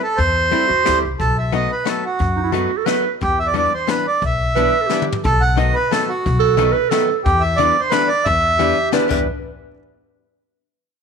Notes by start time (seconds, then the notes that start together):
0.03 A4
0.17 E2 C5, kick, closed hi-hat
0.51 G3 A3 C4 E4, closed hi-hat
0.68 E2 F#4
0.84 D2 G3 A3 C4 E4 G4, snare, closed hi-hat
1.05 C2
1.20 B1 A4, kick, closed hi-hat
1.38 E5
1.52 F#3 A3 B3 D#4 D#5, closed hi-hat
1.72 B4
1.85 F#3 A3 B3 D#4 A4, snare, closed hi-hat
2.05 F#4
2.19 F#2, kick, closed hi-hat
2.36 D#4
2.43 E4
2.52 F#3 A3 B3 D#4 F#4, closed hi-hat
2.77 A4
2.86 F#3 A3 B3 D#4 B4, snare, closed hi-hat
3.21 E2 G4, kick, closed hi-hat
3.39 E5
3.47 D5
3.54 E3 G3 B3 D4 D5, closed hi-hat
3.74 C5
3.87 E3 G3 B3 D4 B4, snare, closed hi-hat
4.07 D5
4.22 B1 E5, kick, closed hi-hat
4.56 E3 G3 B3 D4 B4, closed hi-hat
4.81 A4
4.87 E3 G4, snare
4.91 G3 B3 D4
5.02 mid tom
5.12 floor tom
5.24 B1 A4, kick, closed hi-hat
5.41 F#5
5.57 D#3 F#3 A3 B3 D#4 D#5, closed hi-hat
5.74 B4
5.91 D#3 F#3 A3 B3 D#4 A4, snare, closed hi-hat
6.09 F#4
6.26 B1, kick, closed hi-hat
6.40 A4
6.57 D#3 F#3 A3 B3 D#4, closed hi-hat
6.72 B4
6.90 D#3 F#3 A3 B3 D#4 A4, snare, closed hi-hat
7.24 E2 G4, kick, closed hi-hat
7.41 E5
7.56 D3 E3 G3 B3 D4 D5, closed hi-hat
7.80 C5
7.90 D3 E3 G3 B3 D4 B4, snare, closed hi-hat
8.08 D5
8.25 E2 E5, kick, closed hi-hat
8.58 D3 E3 G3 B3 D4 G4, closed hi-hat
8.92 D3 E3 G3 B3 D4 B4, snare, closed hi-hat
9.09 E2 E3 G3 B3 D4 B4, kick, crash